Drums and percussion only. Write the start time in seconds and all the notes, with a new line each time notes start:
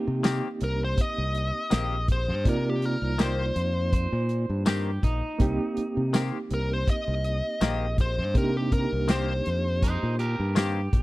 0.24 snare, closed hi-hat, tambourine
0.61 closed hi-hat
0.98 kick, closed hi-hat
1.35 closed hi-hat
1.71 snare, closed hi-hat, tambourine
2.08 kick, closed hi-hat
2.45 kick, closed hi-hat
2.82 closed hi-hat
3.19 snare, closed hi-hat, tambourine
3.56 closed hi-hat
3.93 kick, closed hi-hat
4.29 closed hi-hat
4.66 snare, closed hi-hat, tambourine
5.03 kick, closed hi-hat
5.40 kick, closed hi-hat
5.77 closed hi-hat
6.14 snare, closed hi-hat, tambourine
6.51 closed hi-hat
6.87 kick, closed hi-hat
7.24 closed hi-hat
7.61 snare, closed hi-hat, tambourine
7.98 kick, closed hi-hat
8.35 kick, closed hi-hat
8.72 kick, closed hi-hat
9.08 snare, closed hi-hat, tambourine
9.46 closed hi-hat
9.82 kick, closed hi-hat
10.19 closed hi-hat
10.56 snare, closed hi-hat, tambourine
10.93 kick, closed hi-hat